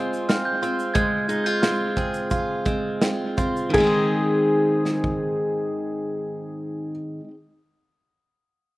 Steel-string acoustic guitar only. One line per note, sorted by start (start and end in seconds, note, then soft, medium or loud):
0.00 0.94 G#3 medium
0.00 0.62 C4 medium
0.00 0.28 F4 medium
0.00 1.97 G#4 medium
0.29 1.28 F4 medium
0.63 1.63 C4 medium
0.95 3.77 G#3 medium
1.29 1.46 D#4 medium
1.46 2.30 F4 medium
1.64 2.65 C4 medium
1.98 3.86 G#4 medium
2.31 3.01 F4 medium
2.65 3.37 C4 medium
3.02 3.82 F4 medium
3.38 3.80 C4 medium
3.70 7.20 G#2 medium
3.70 7.24 D#3 medium
3.78 7.28 G#3 medium
3.78 7.30 C4 medium
3.84 7.34 D#4 medium
3.84 7.37 G#4 medium